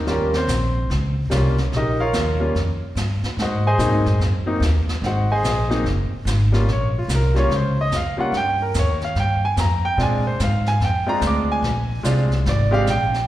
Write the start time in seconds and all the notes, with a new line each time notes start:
0.06 D#2 G3 A#3 C#4 F4 G4 A#4, brush sweep, snare
0.34 C4 C5, snare
0.48 A#1, snare, hi-hat pedal
0.90 C#2, brush sweep, snare
1.30 C2 G3 A#3 C#4 F4, snare, hi-hat pedal
1.58 snare
1.72 A#1, brush sweep, snare
1.77 D#4 G4 A#4 D#5
2.00 F4 A#4 C#5 F5
2.13 D#2, snare, hi-hat pedal
2.40 G3 A#3 C#4 F4
2.55 F2, brush sweep, snare
2.95 G2, snare, hi-hat pedal
3.23 muted upright bass stroke, snare
3.37 G#2, brush sweep, snare
3.42 F#4 C5 D#5 F#5
3.67 G#4 C5 D#5 G#5
3.78 A#2 F#3 A#3 C4 D#4, snare, hi-hat pedal
3.92 G#2
4.06 F#2, snare
4.19 F#2, brush sweep, snare
4.46 F#3 A#3 C4 D#4
4.60 D#2, snare, hi-hat pedal
4.87 muted upright bass stroke, snare
5.02 G#1, brush sweep, snare
5.06 F#4 C5 D#5 F#5
5.32 G#4 C5 D#5 G#5
5.43 A#1, snare, hi-hat pedal
5.70 F#3 A#3 C4 D#4, snare
5.84 F#1, brush sweep, snare
6.11 muted upright bass stroke
6.25 G#1, snare, hi-hat pedal
6.52 G3 A#3 C#4 F4, snare
6.67 A#1, brush sweep, snare
6.73 C#5
6.98 F4
7.08 C2, snare, hi-hat pedal
7.15 A#4
7.34 G3 A#3 C#4 F4, snare
7.39 C#5
7.50 C#2, brush sweep, snare
7.56 C5
7.81 D#5
7.91 F2, snare, hi-hat pedal
7.96 F5
8.17 G3 A#3 C#4 F4 F#5, muted upright bass stroke
8.32 G2, brush sweep, snare
8.37 G5
8.62 A#4
8.74 D#2, snare, hi-hat pedal
8.79 C#5
9.01 F5, snare
9.15 G2, brush sweep, snare
9.20 G5
9.45 G#5
9.57 F2 A#5, snare, hi-hat pedal
9.85 G5
9.97 A#2 G#3 C4 D4 F4, brush sweep, snare
10.03 G#5
10.27 C5
10.40 G#2, snare, hi-hat pedal
10.44 F5
10.66 G#5, snare
10.80 F2, brush sweep, snare
10.84 G5
11.06 G#3 C4 D4 F4 A#5
11.21 D2, snare, hi-hat pedal
11.27 D6
11.52 G#5
11.62 A#1, brush sweep, snare
12.03 C2 G#3 C4 D4 F4, snare, hi-hat pedal
12.32 snare
12.46 G#1 D5, brush sweep, snare
12.71 G#3 C4 D4 G4 F5
12.86 A#1 G5, snare, hi-hat pedal
13.14 snare